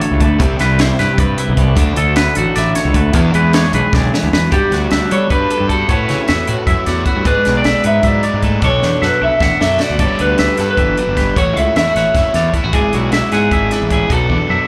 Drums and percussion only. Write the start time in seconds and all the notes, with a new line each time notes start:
0.01 closed hi-hat
0.20 kick, closed hi-hat
0.40 kick, closed hi-hat
0.59 snare, closed hi-hat
0.79 snare, closed hi-hat
0.99 snare, closed hi-hat
1.18 kick, closed hi-hat
1.38 closed hi-hat
1.57 kick, closed hi-hat
1.77 kick, closed hi-hat
1.96 closed hi-hat
2.16 snare, closed hi-hat
2.35 closed hi-hat
2.56 snare, closed hi-hat
2.75 snare, closed hi-hat
2.94 kick, closed hi-hat
3.13 kick, closed hi-hat
3.34 closed hi-hat
3.53 snare, closed hi-hat
3.73 closed hi-hat
3.93 kick, snare
4.14 snare
4.33 snare
4.52 kick, closed hi-hat
4.72 snare, closed hi-hat
4.91 snare, closed hi-hat
5.11 closed hi-hat
5.30 kick, closed hi-hat
5.50 closed hi-hat
5.69 kick, closed hi-hat
5.89 kick, closed hi-hat
6.09 snare, closed hi-hat
6.28 snare, closed hi-hat
6.47 closed hi-hat
6.67 kick, closed hi-hat
6.86 snare, closed hi-hat
7.06 kick, closed hi-hat
7.25 kick, closed hi-hat
7.45 snare, closed hi-hat
7.64 snare, closed hi-hat
7.84 closed hi-hat
8.03 kick, closed hi-hat
8.23 closed hi-hat
8.42 kick, closed hi-hat
8.62 kick, closed hi-hat
8.82 snare
9.02 snare
9.40 kick, snare
9.61 snare
9.80 snare
9.99 kick, closed hi-hat, crash
10.19 closed hi-hat
10.38 snare, closed hi-hat
10.57 snare, closed hi-hat
10.77 kick, closed hi-hat
10.97 closed hi-hat
11.17 kick, snare, closed hi-hat
11.36 kick, closed hi-hat
11.57 closed hi-hat
11.76 snare, closed hi-hat
11.96 snare, closed hi-hat
12.15 kick, snare, closed hi-hat
12.34 snare, closed hi-hat
12.54 kick, closed hi-hat
12.73 kick, closed hi-hat
12.93 closed hi-hat
13.12 snare, closed hi-hat
13.32 snare, closed hi-hat
13.51 kick, closed hi-hat
13.71 snare, closed hi-hat
13.90 kick, closed hi-hat
14.10 kick, closed hi-hat
14.30 kick